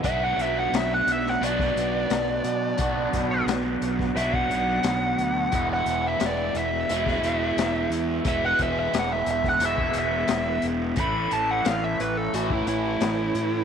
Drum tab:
HH |x-x-x-x-x-x-x-x-|x-x-x-x-x-x-x-x-|x-x-x-x-x-x-x-x-|x-x-x-x-x-x-x-x-|
SD |----o--o-o--o---|--o-o--o----o---|----o----o--o---|----o--o----o---|
BD |o--------o------|o-o----o-o------|o--------o------|o-o----o-o------|

HH |x-x-x-x-x-x-x-x-|
SD |----o-------o---|
BD |o--------o------|